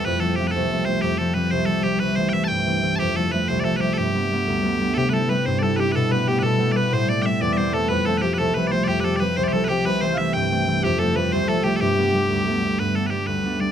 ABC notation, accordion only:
X:1
M:6/8
L:1/16
Q:3/8=123
K:Flyd
V:1 name="Accordion"
z12 | z12 | z12 | z12 |
z12 | G2 A2 B2 c2 A2 G2 | A2 B2 G2 A4 B2 | c2 d2 e2 d4 A2 |
B2 A2 G2 A2 B2 c2 | G4 B2 c2 A2 G2 | B2 c3/2 f/2 e2 g6 | G2 A2 B2 c2 A2 G2 |
G8 z4 | z12 |]